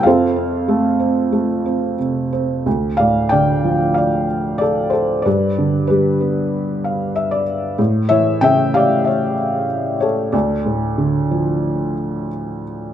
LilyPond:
<<
  \new Staff \with { instrumentName = "Felt piano" } { \time 4/4 \key f \major \tempo 4 = 94 << { <f' a' c'' f''>2. r4 | \key d \dorian r8 <d'' f''>8 <d'' g''>4 <d'' f''>4 <a' d''>8 <a' c''>8 | <b' d''>4 <g' b'>2~ <g' b'>8 r8 | r8 <cis'' e''>8 <e'' g''>8 <d'' f''>8 <cis'' e''>4. <a' cis''>8 |
<a' d''>2. r4 | } \\ { r1 | r1 | r2 r8 f''8 e''16 d''8. | r1 |
r1 | } >> }
  \new Staff \with { instrumentName = "Felt piano" } { \clef bass \time 4/4 \key f \major f,8 c'8 a8 c'8 a8 c'8 c8 c'8 | \key d \dorian d,8 a,8 d8 f2 r8 | g,8 d8 g8 b2 r8 | a,8 e8 cis8 g'2 r8 |
d,8 a,8 d8 f2 r8 | }
>>